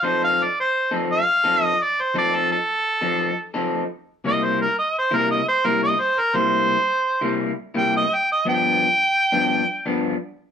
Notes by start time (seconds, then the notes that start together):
0.03 F3 C4 D#4 A4 C5
0.24 F5
0.43 D5
0.60 C5
0.91 F3 C4 D#4 A4
1.13 F5
1.44 F3 C4 D#4 A4
1.65 D#5
1.83 D5
2.01 C5
2.14 F3 C4 D#4 A4
2.18 D5
2.35 A4
2.52 A4
3.01 F3 C4 D#4 A4
3.54 F3 C4 D#4 A4
4.24 C3 G3 A#3 E4 D#5
4.44 C5
4.62 A#4
4.79 D#5
4.99 C5
5.11 C3 G3 A#3 E4 A#4
5.31 D#5
5.48 C5
5.65 C3 G3 A#3 E4 A#4
5.83 D#5
6.00 C5
6.19 A#4
6.34 C3 G3 A#3 E4 C5
7.21 C3 G3 A#3 E4
7.74 C3 G3 A#3 E4 G5
7.97 D#5
8.14 G5
8.32 D#5
8.45 G2 F3 B3 D4 G5
9.32 G2 F3 B3 D4
9.86 G2 F3 B3 D4